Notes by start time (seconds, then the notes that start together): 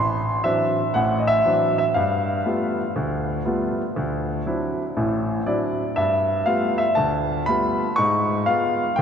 Already playing: A1 C6
0.44 E3 F#3 C4 D4 E5
0.94 A1 A2 F#5
1.19 D#5
1.27 E5
1.45 E3 F#3 C4 D4
1.78 E5
1.94 G2 F5
2.46 G3 A3 B3 F4
2.96 D2
3.45 G3 A3 B3 F4
3.96 D2
4.46 F#3 C4 D4 E4
4.97 A1 A2
5.46 F#3 C4 D4 E4 D5
5.96 G2 E5
6.46 G3 A3 B3 F4 F5
6.78 E5
6.95 D2 A5
7.46 G3 A3 B3 F4 B5
7.96 G#2 G#3 C#6
8.46 G#3 B3 F4 F5
8.96 D3 G5